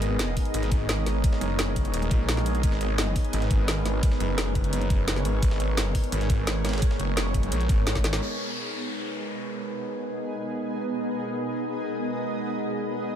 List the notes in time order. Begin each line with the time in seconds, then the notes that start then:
Already playing: G#1 G#3 B3 D#4 G#4 A#4 C#5 D#5
0.02 closed hi-hat, ride
0.19 snare, closed hi-hat, ride
0.37 kick, closed hi-hat, open hi-hat
0.45 closed hi-hat
0.54 G#1, closed hi-hat, ride
0.63 snare, closed hi-hat
0.72 G#1, kick, closed hi-hat, ride
0.89 snare, closed hi-hat, ride
1.06 G#1, snare, closed hi-hat, ride
1.24 kick, closed hi-hat, ride
1.33 snare
1.41 F#1, closed hi-hat, ride
1.59 snare, closed hi-hat, ride
1.76 kick, closed hi-hat, ride
1.85 closed hi-hat, ride
1.94 D#1, closed hi-hat, ride
2.02 closed hi-hat
2.11 A#1, kick, closed hi-hat, ride
2.29 snare, closed hi-hat, ride
2.37 snare, ride
2.46 closed hi-hat, ride
2.55 closed hi-hat
2.63 G#1 B4, kick, closed hi-hat, ride
2.72 snare
2.81 closed hi-hat, ride
2.91 C#5
2.98 snare, closed hi-hat, ride
3.16 kick, closed hi-hat, open hi-hat
3.25 closed hi-hat
3.33 G#1, closed hi-hat, ride
3.42 snare, closed hi-hat
3.51 G#1, kick, closed hi-hat, ride
3.68 snare, closed hi-hat, ride
3.85 G#1, snare, closed hi-hat, ride
4.03 kick, closed hi-hat, ride
4.12 snare
4.20 F#1, closed hi-hat, ride
4.38 snare, closed hi-hat, ride
4.55 kick, closed hi-hat, ride
4.64 closed hi-hat, ride
4.73 F#1, closed hi-hat, ride
4.82 closed hi-hat
4.90 kick, closed hi-hat, ride
5.08 snare, closed hi-hat, ride
5.16 snare, ride
5.25 G#1, closed hi-hat, ride
5.42 G#1 C#5, kick, closed hi-hat, ride
5.51 snare
5.60 closed hi-hat, ride
5.77 snare, closed hi-hat, ride
5.95 kick, closed hi-hat, open hi-hat
6.04 closed hi-hat
6.12 G#1, closed hi-hat, ride
6.21 snare, closed hi-hat
6.30 G#1, kick, closed hi-hat, ride
6.47 snare, closed hi-hat, ride
6.65 G#1, snare, closed hi-hat, ride
6.69 snare, ride
6.73 snare, ride
6.78 snare, ride
6.82 kick, closed hi-hat, ride
6.91 snare
7.00 F#1, closed hi-hat, ride
7.17 snare, closed hi-hat, ride
7.34 kick, closed hi-hat, ride
7.43 closed hi-hat, ride
7.52 A#1, closed hi-hat, ride
7.61 closed hi-hat
7.69 G#1, kick, closed hi-hat, ride
7.87 snare, closed hi-hat, ride
7.95 kick, snare
8.04 snare, closed hi-hat, ride
8.13 snare, ride
8.21 G#3 B3 D#4 A#4 B4, downlifter
8.32 G#4
8.54 D#5